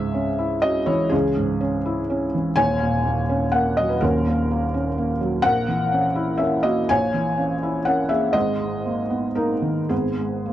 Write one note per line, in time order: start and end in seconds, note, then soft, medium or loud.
0.00 1.09 C#2 medium
0.00 0.29 G#2 soft
0.00 0.60 G#4 medium
0.00 0.63 E5 loud
0.14 0.54 C#4 medium
0.39 0.78 E4 medium
0.62 1.03 C#4 medium
0.62 0.86 F#4 medium
0.62 0.88 D#5 loud
0.86 1.27 E3 medium
0.86 1.10 E4 medium
0.86 1.12 C#5 medium
1.10 2.54 C#2 medium
1.10 1.59 C#4 medium
1.10 2.32 G#4 medium
1.36 1.76 G#2 medium
1.61 2.00 C#4 medium
1.86 2.24 E4 medium
2.10 2.48 C#4 medium
2.35 2.59 E3 medium
2.56 3.97 D#1 medium
2.56 3.98 D#2 medium
2.56 3.49 C#5 loud
2.56 3.52 G#5 loud
2.83 3.21 A#2 medium
3.05 3.44 A#3 medium
3.29 3.68 C#4 medium
3.52 3.92 A#3 medium
3.52 3.76 A#4 medium
3.52 3.77 F#5 medium
3.77 4.17 F#3 medium
3.77 3.90 D#5 loud
3.89 4.02 B4 medium
4.01 5.40 D#1 medium
4.01 5.40 D#2 medium
4.01 4.72 C#4 medium
4.01 5.19 A#4 medium
4.27 4.64 A#2 medium
4.51 4.88 A#3 medium
4.74 5.11 C#4 medium
4.98 5.35 A#3 medium
5.21 5.44 F#3 medium
5.42 6.85 A#1 medium
5.42 6.86 A#2 medium
5.42 6.35 A#4 loud
5.42 6.38 F#5 loud
5.68 6.06 E3 medium
5.92 6.30 C#4 medium
6.15 6.54 E4 medium
6.38 6.80 C#4 medium
6.38 6.63 A#4 medium
6.38 6.64 E5 medium
6.63 7.05 A#3 medium
6.63 6.88 F#4 medium
6.63 6.89 D#5 medium
6.89 8.31 A#1 medium
6.89 8.31 A#2 medium
6.89 7.83 C#5 loud
6.89 7.86 G#5 loud
7.14 7.53 E3 medium
7.38 7.77 C#4 medium
7.63 8.01 E4 medium
7.85 8.25 C#4 medium
7.85 8.09 A#4 medium
7.85 8.10 F#5 medium
8.09 8.35 A#3 medium
8.09 8.33 G#4 medium
8.09 8.34 E5 medium
8.33 9.86 G#1 medium
8.33 9.86 G#2 medium
8.33 9.32 G#4 medium
8.33 9.35 D#5 loud
8.60 9.00 G#3 soft
8.86 9.26 A#3 medium
9.10 9.52 B3 medium
9.35 9.80 A#3 medium
9.35 9.87 D#4 medium
9.35 9.90 A#4 medium
9.62 10.07 D#3 soft
9.89 10.53 G#1 medium
9.89 10.53 G#2 medium
9.89 10.53 B3 medium
9.89 10.53 G#4 medium
10.19 10.53 G#3 soft
10.46 10.53 A#3 soft